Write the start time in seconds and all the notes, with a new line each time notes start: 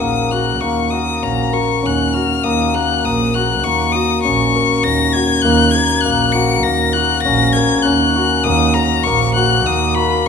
Already playing: C#4 D#4 F#4 G#4 A#4
0.00 A#1 A#3 D#6
0.32 F#4 F#6
0.61 D#2 A#3 C#6
0.91 F#4 D#6
1.23 A#1 C#4 A#5
1.53 F#4 A#4 C#6
1.82 D#2 C#4 F#6
2.14 F#4 F6
2.44 D#2 A#3 D#6
2.74 A#4 F#6
3.03 A#1 A#3 D#6
3.34 F#4 F#6
3.63 D#2 A#3 C#6
3.92 F#4 D#6
4.23 A#1 C#4 C#6
4.56 A#4
4.84 D#2 C#4 A#6
5.13 F#4 G#6
5.42 D#2 A#3 F#6
5.71 A#4 G#6
6.01 F#6
6.05 A#1 A#3
6.32 F#4 C#7
6.63 D#2 A#3 A#6
6.93 F#4 F#6
7.22 A#1 C#4 A#6
7.53 A#4 G#6
7.83 D#2 C#4 F#6
8.16 F#4
8.44 D#2 A#3 D#6
8.74 A#4 A#5
9.04 A#1 A#3 C#6
9.34 F#4 F#6
9.66 D#2 A#3 D#6
9.95 F#4 B5